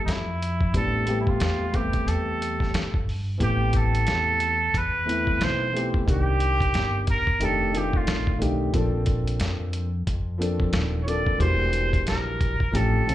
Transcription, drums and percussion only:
0.08 snare, closed hi-hat
0.42 closed hi-hat
0.61 kick
0.74 kick, closed hi-hat
1.07 closed hi-hat
1.27 kick
1.40 snare, closed hi-hat
1.74 kick, closed hi-hat
1.93 kick, closed hi-hat
2.08 closed hi-hat
2.42 closed hi-hat
2.60 kick, snare
2.74 snare, closed hi-hat
2.94 kick
3.09 open hi-hat
3.40 kick, closed hi-hat
3.73 kick, closed hi-hat
3.95 closed hi-hat
4.07 snare, closed hi-hat
4.40 closed hi-hat
4.74 kick, closed hi-hat
5.09 closed hi-hat
5.27 kick
5.41 snare, closed hi-hat
5.77 closed hi-hat
5.94 kick
6.08 kick, closed hi-hat
6.40 closed hi-hat
6.61 kick, closed hi-hat
6.74 snare, closed hi-hat
7.07 kick, closed hi-hat
7.27 kick
7.41 closed hi-hat
7.75 closed hi-hat
7.93 kick
8.07 snare, closed hi-hat
8.27 kick
8.42 closed hi-hat
8.74 kick, closed hi-hat
9.06 kick, closed hi-hat
9.27 closed hi-hat
9.40 snare, closed hi-hat
9.73 closed hi-hat
10.07 kick, closed hi-hat
10.42 closed hi-hat
10.60 kick
10.73 snare, closed hi-hat
11.08 closed hi-hat
11.27 kick
11.40 kick, closed hi-hat
11.73 closed hi-hat
11.93 kick, closed hi-hat
12.07 snare, closed hi-hat
12.41 kick, closed hi-hat
12.60 kick
12.75 closed hi-hat
13.09 closed hi-hat

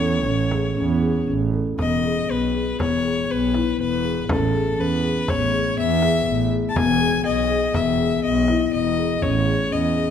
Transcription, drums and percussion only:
0.51 frame drum
0.77 frame drum
1.53 frame drum
1.79 frame drum
2.04 frame drum
2.29 frame drum
2.80 frame drum
3.54 frame drum
4.29 frame drum
4.54 frame drum
4.79 frame drum
5.28 frame drum
6.02 frame drum
6.76 frame drum
7.01 frame drum
7.25 frame drum
7.74 frame drum
8.48 frame drum
9.22 frame drum

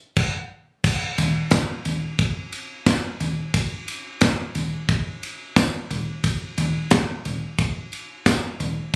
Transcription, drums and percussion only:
0.17 kick, crash
0.84 kick, crash, tambourine
1.18 floor tom, ride, tambourine
1.51 kick, snare, clap, ride, tambourine
1.85 floor tom, ride, tambourine
2.19 kick, ride
2.52 ride, tambourine
2.86 kick, snare, clap, ride, tambourine
3.20 floor tom, ride, tambourine
3.54 kick, ride, tambourine
3.88 ride, tambourine
4.21 kick, snare, clap, ride, tambourine
4.55 floor tom, ride, tambourine
4.89 kick, ride
5.23 ride
5.56 kick, snare, clap, ride, tambourine
5.91 floor tom, ride, tambourine
6.24 kick, ride, tambourine
6.58 floor tom, ride, tambourine
6.91 kick, snare, clap, ride, tambourine
7.25 floor tom, ride, tambourine
7.59 kick, ride, tambourine
7.92 ride, tambourine
8.26 kick, snare, clap, ride, tambourine
8.60 floor tom, ride, tambourine

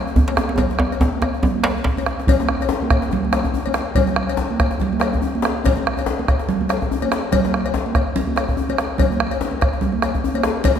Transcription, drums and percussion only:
0.07 djembe tone
0.16 bombo low, djembe bass
0.28 cowbell, djembe slap, high conga
0.37 bombo rim, djembe slap, djembe tone
0.49 bombo rim, djembe slap, djembe tone
0.58 bombo low, cowbell, djembe slap, djembe tone, djembe bass, low conga
0.70 djembe slap, high conga
0.79 bombo rim, djembe slap, djembe tone
0.91 cowbell, djembe slap, high conga, djembe tone
1.01 bombo low, djembe slap, djembe tone, djembe bass
1.13 high conga
1.22 bombo rim, cowbell, djembe slap, djembe tone
1.35 djembe slap, high conga
1.43 bombo low, djembe tone, high conga, low conga, djembe bass
1.55 high conga
1.64 bombo rim, cowbell, djembe slap
1.65 djembe slap
1.76 high conga, djembe bass
1.84 bombo low, djembe slap, high conga, djembe bass
1.97 bombo rim, cowbell, high conga, djembe bass
2.06 bombo rim, djembe slap
2.18 djembe slap, high conga
2.27 bombo low, cowbell, low conga, djembe bass
2.40 djembe slap, high conga
2.49 bombo rim, high conga
2.61 cowbell, djembe tone
2.69 djembe slap, djembe bass
2.83 high conga
2.90 bombo rim, bombo low, cowbell
3.02 djembe slap
3.11 djembe slap, djembe bass, low conga
3.25 high conga
3.33 bombo rim, cowbell, djembe slap
3.44 bombo rim, bombo low, djembe slap, djembe tone
3.54 djembe bass
3.66 cowbell, djembe slap, high conga
3.74 bombo rim, djembe slap, high conga
3.95 bombo low, cowbell, djembe bass, low conga
4.07 djembe slap, high conga
4.16 bombo rim, high conga
4.28 cowbell, djembe tone
4.37 djembe slap, djembe bass
4.51 high conga
4.60 bombo rim, bombo low, cowbell
4.71 djembe slap
4.79 djembe slap, djembe bass, low conga
4.93 high conga
5.00 bombo rim, cowbell, djembe slap
5.13 bombo rim, bombo low, djembe slap, djembe tone
5.22 djembe bass
5.34 djembe slap, high conga
5.42 bombo rim, djembe slap, high conga
5.64 bombo low, cowbell, djembe bass, low conga
5.76 djembe slap, high conga
5.86 bombo rim, high conga
5.97 cowbell, djembe tone
6.06 djembe slap, djembe bass
6.19 high conga
6.28 bombo rim, bombo low, cowbell
6.39 djembe slap
6.49 djembe slap, djembe bass, low conga
6.61 high conga
6.69 bombo rim, cowbell, djembe slap
6.81 bombo rim, bombo low, djembe slap, djembe tone
6.91 djembe bass
7.02 cowbell, high conga
7.12 bombo rim, djembe slap, high conga
7.32 bombo rim, bombo low, cowbell, djembe slap, djembe bass, low conga
7.44 djembe slap, high conga
7.54 bombo rim
7.65 bombo rim, cowbell, high conga
7.74 djembe slap, high conga, djembe bass
7.86 djembe slap, high conga
7.95 bombo rim, bombo low, cowbell, high conga
8.07 bombo rim
8.16 high conga, djembe bass, low conga
8.27 bombo rim, high conga
8.36 bombo rim, cowbell, djembe slap, high conga
8.48 bombo low, djembe tone
8.57 bombo rim, high conga, djembe bass
8.69 cowbell, high conga
8.78 bombo rim, djembe slap, high conga
8.91 bombo rim
8.98 bombo low, cowbell, low conga, djembe bass
9.10 djembe slap, high conga
9.19 bombo rim, high conga
9.31 cowbell, djembe tone
9.41 djembe slap, djembe bass
9.51 high conga
9.61 bombo rim, bombo low, cowbell
9.73 djembe slap
9.81 djembe slap, low conga, djembe bass
9.92 high conga
10.02 bombo rim, cowbell, djembe slap
10.14 bombo rim, bombo low, djembe slap, djembe tone
10.24 djembe bass
10.34 cowbell, djembe slap, high conga
10.43 bombo rim, djembe slap, high conga
10.64 bombo low, cowbell, low conga, djembe bass
10.75 djembe slap, high conga

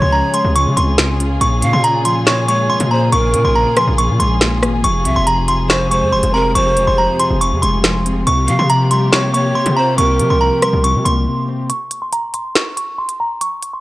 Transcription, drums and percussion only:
0.34 closed hi-hat
0.56 closed hi-hat
0.77 closed hi-hat
0.98 finger snap, snare
1.20 closed hi-hat
1.41 closed hi-hat
1.62 closed hi-hat
1.84 closed hi-hat
2.05 closed hi-hat
2.27 finger snap, snare
2.49 closed hi-hat
2.80 closed hi-hat
3.12 closed hi-hat
3.34 closed hi-hat
3.77 cross-stick, closed hi-hat
3.98 closed hi-hat
4.20 closed hi-hat
4.41 finger snap, snare
4.63 cross-stick, closed hi-hat
4.84 closed hi-hat
5.05 closed hi-hat
5.27 closed hi-hat
5.48 closed hi-hat
5.70 finger snap, snare
5.92 closed hi-hat
6.23 closed hi-hat
6.55 closed hi-hat
6.77 closed hi-hat
7.20 closed hi-hat
7.41 closed hi-hat
7.63 closed hi-hat
7.84 finger snap, snare
8.06 closed hi-hat
8.27 closed hi-hat
8.48 closed hi-hat
8.70 closed hi-hat
8.91 closed hi-hat
9.13 finger snap, snare
9.34 closed hi-hat
9.66 closed hi-hat
9.98 closed hi-hat
10.20 closed hi-hat
10.62 cross-stick, closed hi-hat
10.84 closed hi-hat
11.06 closed hi-hat
11.70 closed hi-hat
11.91 closed hi-hat
12.13 closed hi-hat
12.34 closed hi-hat
12.55 finger snap, snare
12.77 closed hi-hat
13.09 closed hi-hat
13.41 closed hi-hat
13.63 closed hi-hat

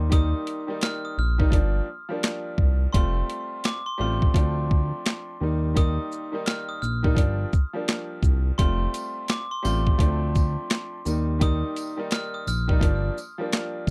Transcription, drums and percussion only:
0.12 kick, closed hi-hat
0.47 closed hi-hat
0.81 snare, clap, closed hi-hat
1.40 kick
1.52 kick, closed hi-hat
2.23 snare, clap, closed hi-hat
2.58 kick
2.94 kick, closed hi-hat
3.30 closed hi-hat
3.64 snare, clap, closed hi-hat
4.22 kick
4.34 kick, closed hi-hat
4.71 kick
5.06 snare, clap, closed hi-hat
5.77 kick, closed hi-hat
6.12 shaker
6.46 snare, clap, closed hi-hat
6.83 shaker
7.04 kick
7.17 kick, closed hi-hat
7.53 kick, shaker
7.88 snare, clap, closed hi-hat
8.23 kick, shaker
8.59 kick, closed hi-hat
8.94 closed hi-hat, tambourine, shaker
9.28 snare, clap, closed hi-hat
9.65 tambourine, shaker
9.87 kick
9.99 kick, closed hi-hat
10.35 kick, tambourine, shaker
10.70 snare, clap, closed hi-hat
11.05 tambourine, shaker
11.41 kick, closed hi-hat
11.76 closed hi-hat, tambourine, shaker
12.11 snare, clap, closed hi-hat
12.47 tambourine, shaker
12.69 kick
12.81 kick, closed hi-hat
13.18 tambourine, shaker
13.53 snare, clap, closed hi-hat

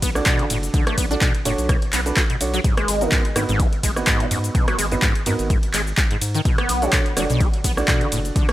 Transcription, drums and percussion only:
0.02 kick, open hi-hat, ride, shaker
0.15 cross-stick, shaker
0.26 kick, clap, closed hi-hat, ride, shaker
0.39 closed hi-hat
0.50 open hi-hat, ride, shaker
0.63 closed hi-hat, shaker
0.74 kick, closed hi-hat, ride, shaker
0.87 cross-stick, closed hi-hat
0.98 kick, open hi-hat, ride, shaker
1.11 closed hi-hat, shaker
1.21 kick, clap, closed hi-hat, ride, shaker
1.35 closed hi-hat
1.45 open hi-hat, ride, shaker
1.58 closed hi-hat, shaker
1.69 kick, cross-stick, closed hi-hat, ride, shaker
1.82 closed hi-hat
1.93 clap, open hi-hat, ride, shaker
2.06 closed hi-hat, shaker
2.17 kick, clap, closed hi-hat, ride, shaker
2.30 closed hi-hat
2.41 open hi-hat, ride, shaker
2.54 closed hi-hat, shaker
2.64 kick, closed hi-hat, ride, shaker
2.77 cross-stick, closed hi-hat
2.88 open hi-hat, ride, shaker
3.01 closed hi-hat, shaker
3.12 kick, clap, closed hi-hat, ride, shaker
3.25 closed hi-hat
3.36 cross-stick, open hi-hat, ride, shaker
3.49 closed hi-hat, shaker
3.60 kick, closed hi-hat, ride, shaker
3.73 closed hi-hat
3.83 kick, open hi-hat, ride, shaker
3.96 cross-stick, shaker
4.07 kick, clap, closed hi-hat, ride, shaker
4.20 closed hi-hat
4.31 open hi-hat, ride, shaker
4.44 closed hi-hat, shaker
4.55 kick, closed hi-hat, ride, shaker
4.68 cross-stick, closed hi-hat
4.79 open hi-hat, ride, shaker
4.92 closed hi-hat, shaker
5.02 kick, clap, closed hi-hat, ride, shaker
5.15 closed hi-hat
5.26 open hi-hat, ride, shaker
5.39 closed hi-hat, shaker
5.50 kick, closed hi-hat, ride, shaker
5.63 closed hi-hat
5.74 clap, open hi-hat, ride, shaker
5.87 shaker
5.97 kick, clap, closed hi-hat, ride, shaker
6.11 closed hi-hat
6.22 open hi-hat, ride, shaker
6.35 closed hi-hat, shaker
6.45 kick, closed hi-hat, ride, shaker
6.58 cross-stick, closed hi-hat
6.69 open hi-hat, ride, shaker
6.82 closed hi-hat, shaker
6.93 kick, clap, closed hi-hat, ride, shaker
7.06 closed hi-hat
7.17 cross-stick, open hi-hat, ride, shaker
7.30 closed hi-hat, shaker
7.41 kick, closed hi-hat, ride, shaker
7.54 closed hi-hat
7.64 kick, open hi-hat, ride, shaker
7.77 cross-stick, shaker
7.88 kick, clap, closed hi-hat, ride, shaker
8.01 closed hi-hat
8.12 open hi-hat, ride, shaker
8.25 closed hi-hat, shaker
8.36 kick, closed hi-hat, ride, shaker
8.49 cross-stick, closed hi-hat

